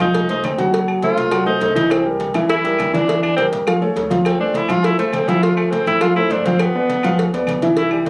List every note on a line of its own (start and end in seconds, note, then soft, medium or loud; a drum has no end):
0.00 0.41 C2 loud
0.00 0.24 F3 medium
0.00 0.28 D#4 medium
0.00 0.24 F4 medium
0.00 0.24 F5 medium
0.00 cowbell medium
0.00 high conga soft
0.00 low conga medium
0.00 low agogo loud
0.00 claves medium
0.15 cowbell loud
0.15 high conga soft
0.15 low conga medium
0.15 low agogo loud
0.29 0.53 A3 medium
0.29 0.47 D#4 medium
0.29 0.53 A4 medium
0.29 0.54 C5 medium
0.29 cowbell medium
0.29 high conga soft
0.43 1.12 F#1 medium
0.43 0.60 C4 medium
0.43 cowbell medium
0.43 high conga medium
0.43 low timbale medium
0.43 low agogo loud
0.43 claves medium
0.58 0.70 F#3 medium
0.58 0.71 F#4 medium
0.58 0.71 F#5 medium
0.58 cowbell medium
0.58 high conga medium
0.73 0.97 F#3 medium
0.73 0.97 F#4 medium
0.73 cowbell loud
0.73 low agogo medium
0.88 high conga soft
0.88 low agogo loud
0.88 claves medium
1.03 1.27 A3 medium
1.03 1.44 F4 medium
1.03 1.27 A4 medium
1.03 1.27 C5 medium
1.03 cowbell medium
1.03 high conga medium
1.03 low timbale medium
1.17 1.58 C2 loud
1.17 cowbell medium
1.31 1.44 F#3 medium
1.31 1.44 F#4 medium
1.31 1.44 F#5 medium
1.31 cowbell loud
1.31 high conga soft
1.31 low agogo loud
1.31 claves medium
1.46 1.58 A3 medium
1.46 1.74 D#4 medium
1.46 1.59 A4 medium
1.46 1.59 C5 medium
1.46 high conga soft
1.46 low agogo medium
1.61 2.29 C2 loud
1.61 1.74 A3 medium
1.61 1.74 A4 medium
1.61 1.74 C5 medium
1.61 cowbell medium
1.61 high conga soft
1.61 low timbale medium
1.75 2.00 E3 medium
1.75 1.93 D#4 loud
1.75 2.00 E4 medium
1.75 2.00 E5 loud
1.75 cowbell medium
1.75 high conga loud
1.75 low agogo medium
1.90 2.06 C4 medium
1.90 cowbell loud
1.90 high conga soft
1.90 low agogo loud
1.90 claves medium
2.06 2.30 G3 medium
2.06 2.30 G4 medium
2.06 2.30 A#4 medium
2.06 high conga soft
2.20 cowbell medium
2.20 high conga medium
2.20 low timbale medium
2.20 low agogo medium
2.34 2.76 E2 loud
2.34 2.59 E3 medium
2.34 2.59 E4 medium
2.34 2.59 E5 medium
2.34 cowbell medium
2.34 high conga soft
2.34 low conga medium
2.34 low agogo loud
2.34 claves medium
2.50 2.91 E4 loud
2.50 cowbell loud
2.50 high conga soft
2.50 low agogo medium
2.64 2.88 G3 medium
2.64 2.89 G4 medium
2.64 2.89 A#4 medium
2.64 cowbell medium
2.64 high conga soft
2.79 3.47 E2 loud
2.79 cowbell medium
2.79 high conga medium
2.79 low timbale medium
2.79 low agogo medium
2.79 claves medium
2.93 3.06 E3 medium
2.93 3.21 D4 medium
2.93 3.06 E4 medium
2.93 3.06 E5 medium
2.93 cowbell medium
2.93 high conga loud
3.08 3.32 E3 medium
3.08 3.32 E4 medium
3.08 3.33 E5 medium
3.08 cowbell loud
3.08 high conga soft
3.08 low agogo loud
3.22 3.36 D4 medium
3.22 high conga soft
3.22 low agogo loud
3.22 claves medium
3.36 3.62 G3 medium
3.36 3.46 C4 medium
3.36 3.62 G4 medium
3.36 3.62 A#4 medium
3.36 cowbell medium
3.36 high conga medium
3.36 low timbale medium
3.52 3.93 A1 medium
3.52 cowbell medium
3.67 3.79 F3 medium
3.67 3.79 F4 medium
3.67 3.79 F5 medium
3.67 cowbell loud
3.67 high conga soft
3.67 low agogo loud
3.67 claves medium
3.81 3.94 A3 medium
3.81 3.94 A4 medium
3.81 3.94 C#5 medium
3.81 high conga soft
3.81 low agogo medium
3.96 4.64 D2 loud
3.96 4.09 A3 medium
3.96 4.09 A4 medium
3.96 4.09 C#5 medium
3.96 cowbell medium
3.96 high conga soft
3.96 low timbale medium
4.10 4.34 F3 medium
4.10 4.35 F4 medium
4.10 4.35 F5 medium
4.10 cowbell medium
4.10 high conga loud
4.10 low agogo medium
4.25 4.39 C4 medium
4.25 cowbell loud
4.25 high conga soft
4.25 low agogo loud
4.25 claves medium
4.39 4.64 A3 medium
4.39 4.58 D4 medium
4.39 4.64 A4 medium
4.39 4.64 C5 medium
4.39 high conga soft
4.54 4.73 E4 medium
4.54 cowbell medium
4.54 high conga medium
4.54 low timbale medium
4.54 low agogo medium
4.69 5.10 A1 loud
4.69 4.93 F3 medium
4.69 4.94 F4 loud
4.69 4.86 F4 loud
4.69 4.94 F5 medium
4.69 cowbell medium
4.69 high conga soft
4.69 low conga medium
4.69 low agogo loud
4.69 claves medium
4.83 4.98 E4 loud
4.83 cowbell loud
4.83 high conga soft
4.83 low agogo loud
4.98 5.23 A3 medium
4.98 5.16 A3 medium
4.98 5.23 A4 medium
4.98 5.23 C5 medium
4.98 cowbell medium
4.98 high conga soft
5.13 5.81 D2 medium
5.13 5.30 C4 medium
5.13 cowbell medium
5.13 high conga medium
5.13 low timbale medium
5.13 low agogo loud
5.13 claves medium
5.28 5.40 F3 loud
5.28 5.44 E4 medium
5.28 5.40 F4 loud
5.28 5.40 F5 loud
5.28 cowbell medium
5.28 high conga medium
5.42 5.66 F3 medium
5.42 5.56 F4 loud
5.42 5.67 F4 medium
5.42 5.67 F5 medium
5.42 cowbell loud
5.42 high conga soft
5.42 low agogo medium
5.56 5.72 A3 medium
5.56 high conga soft
5.56 low agogo loud
5.56 claves medium
5.71 5.96 A3 medium
5.71 5.86 C4 medium
5.71 5.96 A4 medium
5.71 5.96 C5 medium
5.71 cowbell medium
5.71 high conga medium
5.71 low timbale medium
5.86 6.27 A1 loud
5.86 6.03 E4 loud
5.86 cowbell medium
6.01 6.14 F3 medium
6.01 6.15 F4 loud
6.01 6.14 F4 medium
6.01 6.14 F5 medium
6.01 cowbell loud
6.01 high conga soft
6.01 low agogo loud
6.01 claves medium
6.16 6.28 A3 medium
6.16 6.32 E4 loud
6.16 6.29 A4 medium
6.16 6.28 C5 medium
6.16 high conga soft
6.16 low agogo medium
6.30 6.98 G1 loud
6.30 6.43 A3 medium
6.30 6.47 D4 medium
6.30 6.43 A4 medium
6.30 6.43 C5 medium
6.30 cowbell medium
6.30 high conga soft
6.30 low timbale medium
6.45 6.70 F3 loud
6.45 6.63 C4 medium
6.45 6.70 F4 medium
6.45 6.70 F5 medium
6.45 cowbell medium
6.45 high conga loud
6.45 low agogo medium
6.59 7.48 B3 medium
6.59 cowbell loud
6.59 high conga soft
6.59 low agogo loud
6.59 claves medium
6.75 6.99 B3 medium
6.75 6.99 B4 medium
6.75 6.99 D5 medium
6.75 high conga soft
6.89 cowbell medium
6.89 high conga medium
6.89 low timbale medium
6.89 low agogo medium
7.03 7.45 D2 loud
7.03 7.28 F3 loud
7.03 7.28 F4 medium
7.03 7.29 F5 loud
7.03 cowbell medium
7.03 high conga soft
7.03 low conga medium
7.03 low agogo loud
7.03 claves medium
7.18 cowbell loud
7.18 high conga soft
7.18 low agogo loud
7.33 7.57 B3 medium
7.33 7.58 B4 medium
7.33 7.58 D5 medium
7.33 cowbell medium
7.33 high conga soft
7.47 8.10 C2 loud
7.47 cowbell medium
7.47 high conga medium
7.47 low timbale medium
7.47 low agogo loud
7.47 claves medium
7.62 7.75 E3 medium
7.62 7.74 E4 loud
7.62 7.75 E5 medium
7.62 cowbell medium
7.62 high conga loud
7.77 8.01 E3 medium
7.77 7.91 E4 loud
7.77 8.01 E4 medium
7.77 8.02 E5 medium
7.77 cowbell loud
7.77 high conga soft
7.77 low agogo medium
7.91 8.08 G3 medium
7.91 high conga soft
7.91 low agogo loud
7.91 claves medium
8.06 8.10 A#3 medium
8.06 cowbell medium
8.06 high conga medium
8.06 low timbale medium